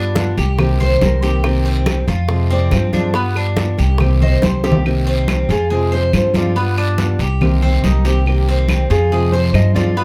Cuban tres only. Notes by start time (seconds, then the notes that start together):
Already playing: D4
0.38 G4
0.80 C5
1.22 G4
1.65 C4
2.08 F4
2.50 C4
2.94 D4
3.15 B3
3.37 D4
3.79 G4
4.22 C5
4.64 G4
5.07 C4
5.50 F4
5.70 G#4
5.92 C5
6.35 F4
6.56 B3
6.78 D4
7.20 G4
7.62 C4
7.84 D#4
8.05 G4
8.49 C4
8.91 F4
9.12 G#4
9.33 C5
9.76 F4
9.97 B3